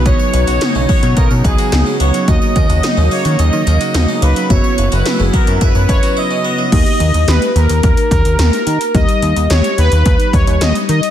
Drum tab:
CC |----------------|----------------|----------------|x---------------|
HH |x-xxx-oxx-xxx-xx|x-xxx-oxx-xxx-xx|x-xxx-xxx-xx----|xxxxxxxxxxxxxxxx|
SD |----o-------o---|----o-------o---|----o-----------|----o-------o---|
BD |o-----o-o-o-----|o-o-------------|o-----o-o-o-----|o-------o-o-----|

CC |----------------|
HH |xxxxxxxxxxxxxxxx|
SD |----o-------o---|
BD |o-------o-o-----|